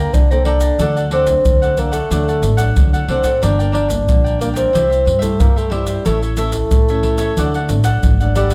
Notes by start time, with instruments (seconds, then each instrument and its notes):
Already playing: nylon-string guitar A#3 D4 A4, bassoon A#3, cavaquinho D5 G5 A#5
0.13 upright bass C2, nylon-string guitar D3, bassoon D4, pandeiro, shaker, surdo
0.30 nylon-string guitar A#3 D4 A4, bassoon C4, cavaquinho D5 G5 A#5, pandeiro, shaker
0.45 bassoon D4, cavaquinho A4 D5 G5 A#5, pandeiro
0.60 cavaquinho D5 G5 A#5, pandeiro, shaker, surdo
0.79 upright bass D2, nylon-string guitar D3 F#3 A3 D4, cavaquinho D4 A4 D5 F#5, pandeiro, shaker, surdo
0.96 cavaquinho A4 D5 F#5, pandeiro, shaker
1.11 bassoon C4, cavaquinho D4 A4 D5 F#5, pandeiro
1.26 nylon-string guitar F#3 A3 D4, muted cavaquinho stroke, pandeiro, shaker, surdo
1.45 upright bass D2, nylon-string guitar A2, pandeiro, shaker, surdo
1.62 cavaquinho A4 D5 F#5, pandeiro, shaker
1.77 nylon-string guitar F#3 A3 D4, bassoon A#3, cavaquinho D4 A4 D5 F#5, pandeiro, shaker, surdo
1.92 bassoon A3, cavaquinho A4 D5 F#5, pandeiro, shaker
2.10 upright bass D2, nylon-string guitar D3 F#3 A3 D4, cavaquinho D4 A4 D5 F#5, pandeiro, shaker, surdo
2.28 cavaquinho A4 D5 F#5, pandeiro, shaker
2.42 upright bass A1, muted cavaquinho stroke, pandeiro, shaker
2.57 nylon-string guitar F#3 A3 D4, cavaquinho A4 D5 F#5, pandeiro, shaker, surdo
2.76 upright bass D2, nylon-string guitar A2, pandeiro, shaker, surdo
2.93 upright bass D3, cavaquinho A4 D5 F#5, pandeiro, shaker
3.08 upright bass C3, nylon-string guitar F#3 A3 D4, bassoon C4, cavaquinho D4 A4 D5 F#5, pandeiro
3.24 upright bass A2, cavaquinho A4 D5 F#5, pandeiro, shaker, surdo
3.42 upright bass G1, nylon-string guitar G2 G3 A#3 D4, cavaquinho D4 A#4 D5 G5, bassoon D4, pandeiro, shaker, surdo
3.59 cavaquinho A#4 D5 G5, pandeiro, shaker
3.72 cavaquinho D4 A#4 D5 G5, bassoon D4, pandeiro
3.88 nylon-string guitar G3 A#3 D4, muted cavaquinho stroke, pandeiro, shaker, surdo
4.08 upright bass A#1, nylon-string guitar D3, pandeiro, shaker, surdo
4.24 cavaquinho A#4 D5 G5, pandeiro, shaker
4.39 nylon-string guitar G3 A#3 D4, bassoon A#3, cavaquinho D4 A#4 D5 G5, pandeiro, shaker, surdo
4.54 bassoon C4, cavaquinho A#4 D5 G5, pandeiro, shaker
4.73 upright bass C2, nylon-string guitar C3 G3 C4 E4, cavaquinho E4 G4 C5 E5, pandeiro, shaker, surdo
4.89 cavaquinho G4 C5 E5, pandeiro, shaker
5.05 upright bass G2, muted cavaquinho stroke, pandeiro
5.19 nylon-string guitar G3 C4, bassoon A3, cavaquinho G4 C5 E5, pandeiro, shaker, surdo
5.23 nylon-string guitar E4
5.40 upright bass G2, nylon-string guitar G2, bassoon A#3, pandeiro, shaker, surdo
5.56 bassoon A3, cavaquinho G4 C5 E5, pandeiro, shaker
5.70 bassoon G3, nylon-string guitar G3 C4 E4, cavaquinho E4 G4 C5 E5, pandeiro
5.86 cavaquinho G4 C5 E5, pandeiro, shaker, surdo
6.05 upright bass A1, nylon-string guitar A2 E3 A3 C#4, bassoon A3, cavaquinho E4 A4 C#5 E5, pandeiro, shaker, surdo
6.22 cavaquinho A4 C#5 E5, pandeiro, shaker
6.37 nylon-string guitar E3 A3 C#4, bassoon A3, cavaquinho E4 A4 C#5 E5, pandeiro, shaker
6.52 muted cavaquinho stroke, pandeiro, shaker, surdo
6.71 upright bass A1, pandeiro, shaker, surdo
6.88 nylon-string guitar E3 A3 C#4, cavaquinho A4 C#5 E5, pandeiro, shaker
7.03 cavaquinho E4 A4 C#5 E5, pandeiro, surdo
7.18 cavaquinho A4 C#5 E5, pandeiro, shaker
7.37 upright bass D2, nylon-string guitar D3 F#3 A3 D4, cavaquinho D4 A4 D5 F#5, pandeiro, shaker, surdo
7.54 cavaquinho A4 D5 F#5, pandeiro, shaker
7.68 upright bass A1, nylon-string guitar F#3 A3 D4, muted cavaquinho stroke, pandeiro, shaker
7.84 cavaquinho A4 D5 F#5, pandeiro, shaker, surdo
8.03 upright bass G#1, pandeiro, shaker, surdo
8.20 nylon-string guitar F#3 A3 D4, cavaquinho A4 D5 F#5, pandeiro, shaker
8.35 bassoon G3, cavaquinho D4 A4 D5 F#5, pandeiro, shaker
8.50 cavaquinho F#5, pandeiro, shaker, surdo